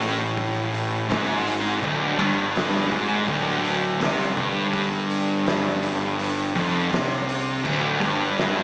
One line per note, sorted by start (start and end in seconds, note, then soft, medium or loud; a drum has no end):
0.00 1.06 A1 loud
0.00 1.09 A2 loud
0.00 open hi-hat medium
0.37 kick loud
0.37 open hi-hat medium
0.74 open hi-hat medium
1.09 1.79 G#1 loud
1.09 1.81 G#2 loud
1.09 snare loud
1.09 open hi-hat medium
1.47 open hi-hat medium
1.82 2.17 D1 loud
1.82 2.19 D2 loud
1.82 kick loud
1.82 crash medium
2.19 2.88 G1 loud
2.19 2.91 G2 loud
2.19 kick loud
2.19 open hi-hat medium
2.56 snare loud
2.56 open hi-hat medium
2.91 3.26 G#1 loud
2.91 3.27 G#2 loud
2.91 kick loud
2.91 open hi-hat medium
3.28 3.97 D1 loud
3.28 4.00 D2 loud
3.28 kick loud
3.28 open hi-hat medium
3.64 open hi-hat medium
4.00 4.35 C2 loud
4.00 4.36 C3 loud
4.00 snare loud
4.00 open hi-hat medium
4.37 6.52 G1 loud
4.37 6.54 G2 loud
4.37 kick loud
4.37 open hi-hat medium
4.73 kick loud
4.73 open hi-hat medium
5.10 open hi-hat medium
5.46 snare loud
5.46 open hi-hat medium
5.83 open hi-hat medium
6.19 open hi-hat medium
6.55 6.89 F1 loud
6.55 6.91 F2 loud
6.55 kick loud
6.55 open hi-hat medium
6.91 7.60 C2 loud
6.91 7.64 C3 loud
6.91 snare loud
6.91 open hi-hat medium
7.29 open hi-hat medium
7.64 7.99 D1 loud
7.64 8.00 D2 loud
7.64 kick loud
7.64 crash loud
8.01 8.63 G1 loud
8.01 8.63 G2 loud
8.01 kick loud
8.01 open hi-hat medium
8.38 snare loud
8.38 open hi-hat medium